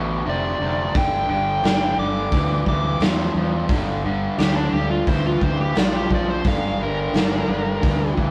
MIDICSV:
0, 0, Header, 1, 5, 480
1, 0, Start_track
1, 0, Tempo, 688073
1, 659, Time_signature, 4, 2, 24, 8
1, 5795, End_track
2, 0, Start_track
2, 0, Title_t, "Lead electric guitar"
2, 0, Program_c, 0, 29
2, 204, Note_on_c, 0, 74, 83
2, 658, Note_off_c, 0, 74, 0
2, 681, Note_on_c, 0, 79, 84
2, 900, Note_off_c, 0, 79, 0
2, 908, Note_on_c, 0, 79, 75
2, 1369, Note_off_c, 0, 79, 0
2, 1390, Note_on_c, 0, 86, 69
2, 1850, Note_off_c, 0, 86, 0
2, 1874, Note_on_c, 0, 86, 86
2, 2099, Note_off_c, 0, 86, 0
2, 3061, Note_on_c, 0, 67, 89
2, 3176, Note_off_c, 0, 67, 0
2, 3179, Note_on_c, 0, 62, 77
2, 3295, Note_off_c, 0, 62, 0
2, 3299, Note_on_c, 0, 67, 70
2, 3415, Note_off_c, 0, 67, 0
2, 3423, Note_on_c, 0, 65, 85
2, 3537, Note_off_c, 0, 65, 0
2, 3546, Note_on_c, 0, 72, 85
2, 3659, Note_off_c, 0, 72, 0
2, 3669, Note_on_c, 0, 65, 75
2, 3780, Note_off_c, 0, 65, 0
2, 3787, Note_on_c, 0, 72, 79
2, 3899, Note_off_c, 0, 72, 0
2, 3910, Note_on_c, 0, 67, 65
2, 4021, Note_off_c, 0, 67, 0
2, 4035, Note_on_c, 0, 74, 85
2, 4143, Note_off_c, 0, 74, 0
2, 4145, Note_on_c, 0, 67, 81
2, 4259, Note_off_c, 0, 67, 0
2, 4287, Note_on_c, 0, 74, 82
2, 4390, Note_off_c, 0, 74, 0
2, 4395, Note_on_c, 0, 72, 83
2, 4504, Note_off_c, 0, 72, 0
2, 4520, Note_on_c, 0, 77, 84
2, 4743, Note_off_c, 0, 77, 0
2, 4764, Note_on_c, 0, 70, 98
2, 5683, Note_off_c, 0, 70, 0
2, 5795, End_track
3, 0, Start_track
3, 0, Title_t, "Overdriven electric guitar"
3, 0, Program_c, 1, 29
3, 0, Note_on_c, 1, 38, 65
3, 0, Note_on_c, 1, 47, 75
3, 157, Note_off_c, 1, 38, 0
3, 158, Note_off_c, 1, 47, 0
3, 176, Note_on_c, 1, 38, 77
3, 179, Note_on_c, 1, 48, 85
3, 394, Note_off_c, 1, 38, 0
3, 395, Note_off_c, 1, 48, 0
3, 422, Note_on_c, 1, 38, 76
3, 426, Note_on_c, 1, 48, 76
3, 637, Note_off_c, 1, 38, 0
3, 639, Note_off_c, 1, 48, 0
3, 656, Note_on_c, 1, 43, 70
3, 662, Note_on_c, 1, 50, 86
3, 873, Note_off_c, 1, 43, 0
3, 877, Note_off_c, 1, 50, 0
3, 895, Note_on_c, 1, 43, 64
3, 895, Note_on_c, 1, 50, 68
3, 1113, Note_off_c, 1, 43, 0
3, 1113, Note_off_c, 1, 50, 0
3, 1132, Note_on_c, 1, 43, 75
3, 1133, Note_on_c, 1, 50, 89
3, 1351, Note_off_c, 1, 43, 0
3, 1352, Note_off_c, 1, 50, 0
3, 1370, Note_on_c, 1, 43, 68
3, 1374, Note_on_c, 1, 50, 75
3, 1590, Note_off_c, 1, 43, 0
3, 1592, Note_off_c, 1, 50, 0
3, 1625, Note_on_c, 1, 43, 76
3, 1630, Note_on_c, 1, 52, 89
3, 1838, Note_off_c, 1, 43, 0
3, 1840, Note_off_c, 1, 52, 0
3, 1862, Note_on_c, 1, 43, 66
3, 1867, Note_on_c, 1, 52, 71
3, 2076, Note_off_c, 1, 43, 0
3, 2079, Note_off_c, 1, 52, 0
3, 2098, Note_on_c, 1, 43, 80
3, 2103, Note_on_c, 1, 53, 85
3, 2314, Note_off_c, 1, 43, 0
3, 2317, Note_off_c, 1, 53, 0
3, 2349, Note_on_c, 1, 43, 74
3, 2351, Note_on_c, 1, 53, 75
3, 2559, Note_off_c, 1, 43, 0
3, 2561, Note_off_c, 1, 53, 0
3, 2593, Note_on_c, 1, 43, 74
3, 2594, Note_on_c, 1, 50, 86
3, 2801, Note_off_c, 1, 43, 0
3, 2802, Note_off_c, 1, 50, 0
3, 2822, Note_on_c, 1, 43, 68
3, 2823, Note_on_c, 1, 50, 82
3, 3036, Note_off_c, 1, 43, 0
3, 3037, Note_off_c, 1, 50, 0
3, 3057, Note_on_c, 1, 43, 81
3, 3059, Note_on_c, 1, 50, 90
3, 3274, Note_off_c, 1, 43, 0
3, 3275, Note_off_c, 1, 50, 0
3, 3307, Note_on_c, 1, 43, 68
3, 3309, Note_on_c, 1, 50, 72
3, 3519, Note_off_c, 1, 43, 0
3, 3520, Note_off_c, 1, 50, 0
3, 3541, Note_on_c, 1, 43, 73
3, 3548, Note_on_c, 1, 52, 80
3, 3756, Note_off_c, 1, 43, 0
3, 3759, Note_off_c, 1, 52, 0
3, 3792, Note_on_c, 1, 43, 61
3, 3794, Note_on_c, 1, 52, 78
3, 4001, Note_off_c, 1, 43, 0
3, 4002, Note_off_c, 1, 52, 0
3, 4017, Note_on_c, 1, 43, 78
3, 4018, Note_on_c, 1, 53, 85
3, 4234, Note_off_c, 1, 43, 0
3, 4234, Note_off_c, 1, 53, 0
3, 4255, Note_on_c, 1, 43, 69
3, 4258, Note_on_c, 1, 53, 85
3, 4473, Note_off_c, 1, 43, 0
3, 4475, Note_off_c, 1, 53, 0
3, 4506, Note_on_c, 1, 50, 89
3, 4507, Note_on_c, 1, 43, 85
3, 4719, Note_off_c, 1, 43, 0
3, 4719, Note_off_c, 1, 50, 0
3, 4739, Note_on_c, 1, 43, 72
3, 4741, Note_on_c, 1, 50, 73
3, 4955, Note_off_c, 1, 43, 0
3, 4956, Note_off_c, 1, 50, 0
3, 4975, Note_on_c, 1, 43, 76
3, 4980, Note_on_c, 1, 50, 89
3, 5193, Note_off_c, 1, 43, 0
3, 5195, Note_off_c, 1, 50, 0
3, 5211, Note_on_c, 1, 43, 62
3, 5217, Note_on_c, 1, 50, 76
3, 5431, Note_off_c, 1, 43, 0
3, 5434, Note_off_c, 1, 50, 0
3, 5449, Note_on_c, 1, 43, 83
3, 5453, Note_on_c, 1, 52, 85
3, 5670, Note_off_c, 1, 43, 0
3, 5672, Note_off_c, 1, 52, 0
3, 5691, Note_on_c, 1, 43, 68
3, 5698, Note_on_c, 1, 52, 72
3, 5795, Note_off_c, 1, 43, 0
3, 5795, Note_off_c, 1, 52, 0
3, 5795, End_track
4, 0, Start_track
4, 0, Title_t, "Fingered electric bass"
4, 0, Program_c, 2, 33
4, 0, Note_on_c, 2, 33, 82
4, 145, Note_off_c, 2, 33, 0
4, 183, Note_on_c, 2, 29, 84
4, 385, Note_off_c, 2, 29, 0
4, 420, Note_on_c, 2, 29, 78
4, 623, Note_off_c, 2, 29, 0
4, 661, Note_on_c, 2, 31, 83
4, 863, Note_off_c, 2, 31, 0
4, 903, Note_on_c, 2, 31, 77
4, 1105, Note_off_c, 2, 31, 0
4, 1135, Note_on_c, 2, 31, 86
4, 1340, Note_off_c, 2, 31, 0
4, 1381, Note_on_c, 2, 31, 81
4, 1583, Note_off_c, 2, 31, 0
4, 1620, Note_on_c, 2, 38, 86
4, 1823, Note_off_c, 2, 38, 0
4, 1855, Note_on_c, 2, 38, 83
4, 2060, Note_off_c, 2, 38, 0
4, 2090, Note_on_c, 2, 40, 80
4, 2297, Note_off_c, 2, 40, 0
4, 2334, Note_on_c, 2, 40, 87
4, 2539, Note_off_c, 2, 40, 0
4, 2572, Note_on_c, 2, 31, 84
4, 2982, Note_off_c, 2, 31, 0
4, 3057, Note_on_c, 2, 38, 83
4, 3261, Note_off_c, 2, 38, 0
4, 3295, Note_on_c, 2, 38, 80
4, 3500, Note_off_c, 2, 38, 0
4, 3535, Note_on_c, 2, 38, 89
4, 3740, Note_off_c, 2, 38, 0
4, 3778, Note_on_c, 2, 38, 82
4, 3981, Note_off_c, 2, 38, 0
4, 4017, Note_on_c, 2, 34, 83
4, 4221, Note_off_c, 2, 34, 0
4, 4256, Note_on_c, 2, 34, 78
4, 4461, Note_off_c, 2, 34, 0
4, 4496, Note_on_c, 2, 31, 84
4, 4701, Note_off_c, 2, 31, 0
4, 4728, Note_on_c, 2, 31, 85
4, 4936, Note_off_c, 2, 31, 0
4, 4978, Note_on_c, 2, 31, 80
4, 5182, Note_off_c, 2, 31, 0
4, 5218, Note_on_c, 2, 31, 81
4, 5422, Note_off_c, 2, 31, 0
4, 5463, Note_on_c, 2, 38, 90
4, 5664, Note_off_c, 2, 38, 0
4, 5700, Note_on_c, 2, 38, 86
4, 5795, Note_off_c, 2, 38, 0
4, 5795, End_track
5, 0, Start_track
5, 0, Title_t, "Drums"
5, 663, Note_on_c, 9, 36, 109
5, 665, Note_on_c, 9, 46, 52
5, 733, Note_off_c, 9, 36, 0
5, 735, Note_off_c, 9, 46, 0
5, 1142, Note_on_c, 9, 46, 49
5, 1153, Note_on_c, 9, 38, 107
5, 1211, Note_off_c, 9, 46, 0
5, 1223, Note_off_c, 9, 38, 0
5, 1616, Note_on_c, 9, 46, 49
5, 1619, Note_on_c, 9, 36, 102
5, 1686, Note_off_c, 9, 46, 0
5, 1689, Note_off_c, 9, 36, 0
5, 1858, Note_on_c, 9, 36, 70
5, 1928, Note_off_c, 9, 36, 0
5, 2095, Note_on_c, 9, 46, 57
5, 2107, Note_on_c, 9, 38, 99
5, 2165, Note_off_c, 9, 46, 0
5, 2177, Note_off_c, 9, 38, 0
5, 2572, Note_on_c, 9, 46, 54
5, 2576, Note_on_c, 9, 36, 106
5, 2642, Note_off_c, 9, 46, 0
5, 2646, Note_off_c, 9, 36, 0
5, 3059, Note_on_c, 9, 46, 53
5, 3071, Note_on_c, 9, 38, 103
5, 3129, Note_off_c, 9, 46, 0
5, 3141, Note_off_c, 9, 38, 0
5, 3535, Note_on_c, 9, 46, 50
5, 3538, Note_on_c, 9, 36, 105
5, 3605, Note_off_c, 9, 46, 0
5, 3608, Note_off_c, 9, 36, 0
5, 3777, Note_on_c, 9, 36, 76
5, 3847, Note_off_c, 9, 36, 0
5, 4013, Note_on_c, 9, 46, 49
5, 4025, Note_on_c, 9, 38, 109
5, 4082, Note_off_c, 9, 46, 0
5, 4094, Note_off_c, 9, 38, 0
5, 4259, Note_on_c, 9, 36, 73
5, 4329, Note_off_c, 9, 36, 0
5, 4494, Note_on_c, 9, 46, 51
5, 4499, Note_on_c, 9, 36, 102
5, 4564, Note_off_c, 9, 46, 0
5, 4569, Note_off_c, 9, 36, 0
5, 4981, Note_on_c, 9, 46, 49
5, 4993, Note_on_c, 9, 38, 104
5, 5051, Note_off_c, 9, 46, 0
5, 5063, Note_off_c, 9, 38, 0
5, 5463, Note_on_c, 9, 36, 107
5, 5465, Note_on_c, 9, 46, 52
5, 5533, Note_off_c, 9, 36, 0
5, 5534, Note_off_c, 9, 46, 0
5, 5702, Note_on_c, 9, 36, 69
5, 5772, Note_off_c, 9, 36, 0
5, 5795, End_track
0, 0, End_of_file